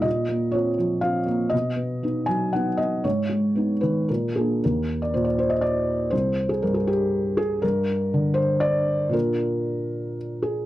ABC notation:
X:1
M:3/4
L:1/16
Q:1/4=119
K:Bbdor
V:1 name="Felt piano"
e4 d4 f4 | ^d6 a2 ^f2 d2 | d6 _c2 B2 A2 | [K:Eb] B3 d c d c e d4 |
c3 A B A G4 A2 | B6 c2 d4 | B8 z2 A2 |]
V:2 name="Felt piano"
B,,2 B,2 [CF]2 F,2 [CF]2 B,2 | =B,,2 =B,2 [B,^D]2 ^F,2 [B,D]2 B,2 | A,,2 A,2 [_CE]2 E,2 B,,2 [B,=D]2 | [K:Eb] E,,4 B,,8 |
C,,4 G,,8 | G,,4 D,8 | [B,,B,DF]12 |]